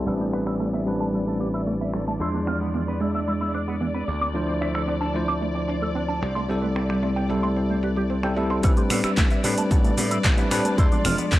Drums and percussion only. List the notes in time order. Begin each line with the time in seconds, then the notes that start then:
0.07 closed hi-hat
0.33 finger snap
0.47 finger snap
0.60 closed hi-hat
0.87 closed hi-hat
1.00 closed hi-hat
1.14 closed hi-hat
1.27 closed hi-hat
1.40 closed hi-hat
1.54 closed hi-hat
1.67 closed hi-hat
1.80 closed hi-hat
1.94 finger snap, closed hi-hat
2.07 closed hi-hat
2.21 closed hi-hat
2.47 finger snap, closed hi-hat
2.61 closed hi-hat
2.74 closed hi-hat
2.87 closed hi-hat
3.01 closed hi-hat
3.14 closed hi-hat
3.27 closed hi-hat
3.41 closed hi-hat
3.54 closed hi-hat
3.68 closed hi-hat
3.82 closed hi-hat
3.95 closed hi-hat
4.08 closed hi-hat
4.22 closed hi-hat
4.35 closed hi-hat
4.49 closed hi-hat
4.62 finger snap, closed hi-hat
4.75 finger snap, closed hi-hat
4.89 closed hi-hat
5.02 closed hi-hat
5.15 closed hi-hat
5.29 closed hi-hat
5.42 closed hi-hat
5.56 closed hi-hat
5.69 closed hi-hat
5.83 closed hi-hat
5.96 closed hi-hat
6.10 closed hi-hat
6.23 finger snap, closed hi-hat
6.36 closed hi-hat
6.50 closed hi-hat
6.63 closed hi-hat
6.76 finger snap, closed hi-hat
6.90 finger snap, closed hi-hat
7.03 closed hi-hat
7.16 closed hi-hat
7.30 closed hi-hat
7.43 closed hi-hat
7.56 closed hi-hat
7.70 closed hi-hat
7.83 closed hi-hat
7.96 closed hi-hat
8.10 closed hi-hat
8.23 finger snap, closed hi-hat
8.36 closed hi-hat
8.50 closed hi-hat
8.63 kick, closed hi-hat, cabasa
8.77 closed hi-hat, cabasa
8.90 finger snap, open hi-hat, cabasa
9.04 finger snap, closed hi-hat, cabasa
9.17 kick, clap, closed hi-hat, cabasa
9.31 closed hi-hat, cabasa
9.44 open hi-hat, cabasa
9.58 closed hi-hat, cabasa
9.71 kick, closed hi-hat, cabasa
9.84 closed hi-hat, cabasa
9.98 open hi-hat, cabasa
10.11 closed hi-hat, cabasa
10.24 kick, clap, closed hi-hat, cabasa
10.38 closed hi-hat, cabasa
10.51 finger snap, open hi-hat, cabasa
10.65 closed hi-hat, cabasa
10.78 kick, closed hi-hat, cabasa
10.92 closed hi-hat, cabasa
11.05 finger snap, open hi-hat, cabasa
11.18 closed hi-hat, cabasa
11.32 kick, clap, closed hi-hat, cabasa